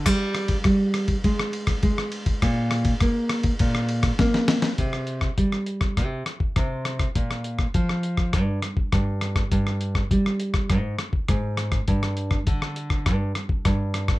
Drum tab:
RD |x-xxx-xxx-xxx-xx|x-xxx-xxx-xxx-xx|----------------|----------------|
HH |----------------|----------------|x-x-x-xxx-x-x-xx|xxx-x-x-x-x-x-xx|
SD |r-r-r-r--r-r-r--|r-r-r-r--r-roooo|-r-r-r-rr-r-r-rr|-r-r-r-rr-r-r-rr|
BD |o--oo--oo--oo--o|o--oo--oo--oo---|o--oo--oo--oo--o|o--oo--oo--oo--o|

RD |----------------|----------------|
HH |x-x-x-xxx-x-x-xx|xxx-x-x-x-x-x-xx|
SD |-r-r-r-rr-r-r-rr|-r-r-r-rr-r-r-rr|
BD |o--oo--oo--oo--o|o--oo--oo--oo--o|